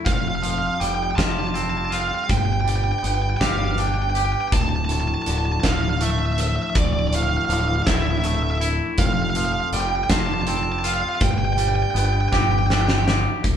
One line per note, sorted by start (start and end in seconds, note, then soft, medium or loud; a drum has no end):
0.00 2.26 C4 medium
0.00 2.25 A4 medium
0.04 0.68 F1 medium
0.04 1.91 F2 medium
0.04 4.48 G3 medium
0.04 0.12 F5 medium
0.04 kick loud
0.04 closed hi-hat medium
0.12 0.20 F5 medium
0.21 0.28 F5 medium
0.28 0.35 F5 medium
0.35 0.43 F5 medium
0.42 2.29 F3 medium
0.42 0.50 F5 medium
0.42 closed hi-hat medium
0.50 0.58 F5 medium
0.58 0.66 F5 medium
0.67 0.74 F5 medium
0.75 0.82 F5 medium
0.80 1.12 F1 medium
0.80 2.29 G3 medium
0.80 0.87 G5 medium
0.80 closed hi-hat medium
0.88 0.95 G5 medium
0.95 1.03 G5 medium
1.03 1.10 G5 medium
1.11 1.16 G5 medium
1.16 2.11 F1 medium
1.16 1.89 F4 medium
1.16 1.23 A5 loud
1.16 kick medium
1.16 snare loud
1.16 closed hi-hat medium
1.23 1.31 A5 medium
1.32 1.39 A5 medium
1.39 1.47 A5 medium
1.47 1.54 A5 loud
1.54 2.29 C4 medium
1.54 1.62 A5 medium
1.54 closed hi-hat medium
1.62 1.70 A5 medium
1.70 1.77 A5 medium
1.78 1.85 A5 medium
1.85 1.93 A5 medium
1.90 2.28 F4 medium
1.90 2.00 F5 medium
1.90 closed hi-hat medium
2.01 2.07 F5 medium
2.08 2.15 F5 medium
2.15 2.23 F5 medium
2.24 4.15 G2 medium
2.24 2.32 F5 medium
2.29 2.91 G1 medium
2.29 4.50 B3 medium
2.29 8.94 D4 medium
2.29 4.50 B4 medium
2.29 2.37 G5 loud
2.29 kick loud
2.29 closed hi-hat medium
2.38 2.45 G5 medium
2.46 2.52 G5 medium
2.53 2.60 G5 medium
2.61 2.68 G5 medium
2.65 4.52 G3 medium
2.65 closed hi-hat medium
2.69 2.76 G5 medium
2.76 2.83 G5 loud
2.84 2.91 G5 medium
2.92 2.99 G5 medium
2.99 4.52 B3 medium
2.99 3.07 G5 medium
3.04 3.35 G1 medium
3.04 3.14 G5 medium
3.04 closed hi-hat medium
3.15 3.22 G5 medium
3.22 3.29 G5 medium
3.30 3.37 G5 medium
3.37 4.14 G4 medium
3.37 3.45 G5 medium
3.41 4.34 G1 medium
3.41 3.49 F5 medium
3.41 kick medium
3.41 snare loud
3.41 closed hi-hat medium
3.50 3.56 F5 medium
3.56 3.64 F5 medium
3.65 3.71 F5 medium
3.71 3.79 F5 medium
3.77 7.27 D4 medium
3.77 3.87 G5 medium
3.77 closed hi-hat medium
3.87 3.94 G5 medium
3.95 4.02 G5 medium
4.02 4.09 G5 medium
4.10 4.17 G5 medium
4.15 4.52 G4 medium
4.15 4.25 G5 medium
4.15 closed hi-hat medium
4.25 4.32 G5 medium
4.32 4.40 G5 medium
4.41 4.48 G5 medium
4.48 6.38 D2 medium
4.48 8.94 E3 medium
4.48 8.94 F3 medium
4.48 11.17 A4 medium
4.48 4.54 G5 medium
4.52 5.14 D1 medium
4.52 4.61 A5 medium
4.52 kick loud
4.52 closed hi-hat medium
4.62 4.69 A5 medium
4.69 4.76 A5 medium
4.76 4.84 A5 medium
4.85 4.92 A5 medium
4.89 6.75 A2 medium
4.89 5.00 A5 medium
4.89 closed hi-hat medium
5.01 5.07 A5 medium
5.08 5.14 A5 medium
5.14 5.22 A5 medium
5.22 5.30 A5 medium
5.26 5.58 D1 medium
5.26 7.12 D3 medium
5.26 closed hi-hat medium
5.31 5.38 A5 medium
5.38 5.45 A5 medium
5.46 5.52 A5 medium
5.52 5.60 A5 medium
5.60 6.57 D1 medium
5.60 5.68 A5 medium
5.60 kick medium
5.60 snare medium
5.60 closed hi-hat medium
5.65 5.73 F5 medium
5.74 5.81 F5 medium
5.82 5.90 F5 medium
5.90 5.99 F5 medium
6.01 8.24 A3 medium
6.01 6.10 E5 medium
6.01 closed hi-hat medium
6.10 6.18 E5 medium
6.19 6.25 E5 medium
6.26 6.32 E5 medium
6.32 6.40 E5 medium
6.38 6.47 E5 medium
6.38 closed hi-hat medium
6.47 6.55 E5 medium
6.56 6.62 E5 medium
6.62 6.70 E5 medium
6.70 6.78 E5 medium
6.75 7.37 D1 medium
6.75 8.61 D2 medium
6.75 6.85 D5 medium
6.75 kick loud
6.75 closed hi-hat medium
6.85 6.93 D5 medium
6.93 6.99 D5 medium
6.99 7.07 D5 medium
7.07 7.15 D5 medium
7.12 8.98 A2 medium
7.12 7.22 F5 medium
7.12 closed hi-hat medium
7.23 7.29 F5 medium
7.29 7.37 F5 medium
7.37 7.45 F5 medium
7.45 7.80 D1 loud
7.45 7.52 F5 medium
7.49 8.98 D3 medium
7.49 7.60 F5 medium
7.49 closed hi-hat medium
7.60 7.68 F5 medium
7.68 7.76 F5 medium
7.76 7.82 F5 medium
7.83 8.60 E4 medium
7.83 7.87 F5 medium
7.87 8.80 D1 medium
7.87 7.95 E5 medium
7.87 kick medium
7.87 snare loud
7.87 closed hi-hat medium
7.95 8.02 E5 medium
8.03 8.11 E5 medium
8.11 8.17 E5 medium
8.18 8.26 E5 medium
8.24 8.99 A3 medium
8.24 8.35 E5 medium
8.24 closed hi-hat medium
8.35 8.42 E5 medium
8.43 8.50 E5 medium
8.51 8.58 E5 medium
8.58 8.98 E4 medium
8.58 8.66 E5 medium
8.58 closed hi-hat medium
8.98 9.60 F1 medium
8.98 10.84 F2 medium
8.98 13.40 G3 medium
8.98 11.19 C4 medium
8.98 11.19 F4 medium
8.98 9.06 F5 medium
8.98 kick medium
8.98 closed hi-hat medium
9.06 9.13 F5 medium
9.13 9.21 F5 medium
9.22 9.30 F5 medium
9.30 9.36 F5 medium
9.35 11.21 F3 medium
9.35 9.45 F5 medium
9.35 closed hi-hat medium
9.45 9.52 F5 medium
9.53 9.60 F5 medium
9.60 9.68 F5 medium
9.72 10.03 F1 medium
9.72 11.21 G3 medium
9.72 9.80 G5 medium
9.72 closed hi-hat medium
9.81 9.88 G5 medium
9.89 9.95 G5 medium
9.96 10.03 G5 medium
10.04 10.11 G5 medium
10.10 11.02 F1 medium
10.10 10.83 F4 medium
10.10 10.18 A5 loud
10.10 kick medium
10.10 snare loud
10.10 closed hi-hat medium
10.18 10.26 A5 medium
10.26 10.33 A5 medium
10.34 10.41 A5 medium
10.42 10.48 A5 medium
10.47 11.21 C4 medium
10.47 10.56 A5 medium
10.47 closed hi-hat medium
10.57 10.63 A5 medium
10.63 10.71 A5 medium
10.72 10.79 A5 medium
10.79 10.87 A5 medium
10.84 11.21 F4 medium
10.84 10.93 F5 medium
10.84 closed hi-hat medium
10.94 11.01 F5 medium
11.02 11.08 F5 medium
11.09 11.15 F5 medium
11.15 11.23 F5 medium
11.20 11.83 G1 loud
11.20 13.07 G2 medium
11.20 13.42 B3 medium
11.20 13.41 D4 medium
11.20 13.41 B4 medium
11.20 11.30 G5 medium
11.20 kick loud
11.20 closed hi-hat medium
11.31 11.38 G5 medium
11.38 11.45 G5 medium
11.45 11.52 G5 medium
11.53 11.59 G5 medium
11.57 13.44 G3 medium
11.57 11.67 G5 medium
11.57 closed hi-hat medium
11.68 11.75 G5 medium
11.76 11.82 G5 medium
11.83 11.90 G5 medium
11.91 12.26 G1 loud
11.91 13.44 B3 medium
11.91 11.97 G5 medium
11.96 12.05 G5 medium
11.96 closed hi-hat medium
12.05 12.13 G5 medium
12.13 12.20 G5 medium
12.21 12.28 G5 medium
12.29 13.06 G4 medium
12.29 12.36 G5 medium
12.29 snare medium
12.33 13.26 G1 medium
12.33 12.43 G5 medium
12.33 kick medium
12.43 12.51 G5 medium
12.52 12.58 G5 medium
12.59 12.66 G5 medium
12.67 13.45 D4 medium
12.67 12.74 G5 medium
12.67 snare medium
12.74 12.81 G5 medium
12.82 12.88 G5 medium
12.88 12.95 G5 medium
12.88 snare medium
12.95 13.03 G5 medium
13.07 13.44 G4 medium
13.07 snare medium
13.44 13.57 D1 medium
13.44 13.57 D2 medium
13.44 13.57 F3 medium
13.44 13.57 D4 medium
13.44 13.57 E4 medium
13.44 13.57 A4 medium
13.44 kick medium
13.44 closed hi-hat medium